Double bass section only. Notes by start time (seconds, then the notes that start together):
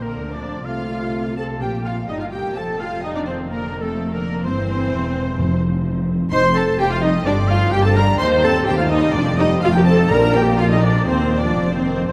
Already playing: A#1
0.18 D2
0.65 C2
1.62 A#1
2.09 G1
2.56 F1
4.45 G1
4.92 E1
5.38 F1
6.32 F1
6.78 F1
7.26 G1
7.73 G1
8.20 D#2
8.66 D#2
9.14 F1
9.63 F1
10.11 A#1
11.07 D#2
11.56 F1
12.08 A#1